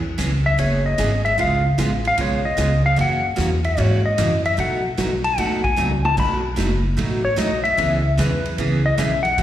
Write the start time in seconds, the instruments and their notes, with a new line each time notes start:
Already playing: upright bass E2
0.18 upright bass C#2, steel-string acoustic guitar E3 B3 C#4 G#4, kick, snare, hi-hat pedal, ride
0.46 electric slide guitar E5
0.58 upright bass F#1, steel-string acoustic guitar E3 B3 C#4 G#4, electric slide guitar C#5, kick, ride
0.86 electric slide guitar D#5
0.98 upright bass G#1, steel-string acoustic guitar E3 B3 C#4 G#4, kick, snare, hi-hat pedal, ride
1.25 electric slide guitar E5, ride
1.38 upright bass C#2, steel-string acoustic guitar C#3 G#3 B3 F4 G#4, electric slide guitar F5, kick, ride
1.78 upright bass A1, steel-string acoustic guitar C#3 G#3 B3 F4 G#4, kick, snare, hi-hat pedal, ride
2.05 electric slide guitar F5, ride
2.18 upright bass B1, steel-string acoustic guitar C#3 G#3 B3 F4 G#4, electric slide guitar C#5, kick, ride
2.45 electric slide guitar D#5
2.57 upright bass C#2, steel-string acoustic guitar C#3 G#3 B3 F4 G#4, kick, snare, hi-hat pedal, ride
2.86 electric slide guitar F5
2.96 upright bass F#2, steel-string acoustic guitar C#3 E3 A#3 C#4 F#4, kick, ride
3.01 electric slide guitar F#5
3.36 upright bass E2, steel-string acoustic guitar C#3 E3 A#3 C#4 F#4, kick, snare, hi-hat pedal, ride
3.64 electric slide guitar E5, ride
3.77 upright bass G#2, steel-string acoustic guitar C#3 E3 A#3 C#4 F#4, electric slide guitar C#5, kick, ride
4.06 electric slide guitar D#5
4.18 upright bass F#2, steel-string acoustic guitar C#3 E3 A#3 C#4 F#4, kick, snare, hi-hat pedal, ride
4.45 electric slide guitar E5, ride
4.57 steel-string acoustic guitar B2 F#3 A3 D#4 F#4, upright bass B2, electric slide guitar F#5, kick, ride
4.97 upright bass B1, steel-string acoustic guitar B2 F#3 A3 D#4 F#4, kick, snare, hi-hat pedal, ride
5.24 electric slide guitar A5, ride
5.38 upright bass D#2, steel-string acoustic guitar B2 F#3 A3 D#4 F#4, electric slide guitar F#5, kick, ride
5.64 electric slide guitar G#5, kick
5.76 upright bass C#2, steel-string acoustic guitar B2 F#3 A3 D#4 F#4, hi-hat pedal, high tom
5.91 high tom
6.05 electric slide guitar A5, mid tom
6.17 upright bass B1, steel-string acoustic guitar B2 F#3 A3 D#4 F#4, electric slide guitar B5, kick, crash
6.56 upright bass F#1, steel-string acoustic guitar B2 F#3 A3 D#4 F#4, kick, snare, hi-hat pedal, ride
6.97 upright bass A1, steel-string acoustic guitar B2 F#3 A3 D#4 F#4, kick, ride
7.25 electric slide guitar C#5
7.36 upright bass B1, steel-string acoustic guitar B2 F#3 A3 D#4 F#4, electric slide guitar D#5, kick, snare, hi-hat pedal, ride
7.64 electric slide guitar E5, ride
7.77 upright bass C#2, steel-string acoustic guitar C#3 E3 B3 C#4 G#4, kick, ride
8.17 upright bass E2, steel-string acoustic guitar C#3 E3 B3 C#4 G#4, electric slide guitar B4, kick, snare, hi-hat pedal, ride
8.45 ride
8.58 upright bass C#2, steel-string acoustic guitar C#3 E3 B3 C#4 G#4, kick, ride
8.86 electric slide guitar D#5
8.98 upright bass B1, steel-string acoustic guitar C#3 E3 B3 C#4 G#4, electric slide guitar E5, kick, snare, hi-hat pedal, ride
9.23 electric slide guitar F#5, ride
9.38 upright bass B2, steel-string acoustic guitar B2 F#3 A3 D#4 F#4, kick, ride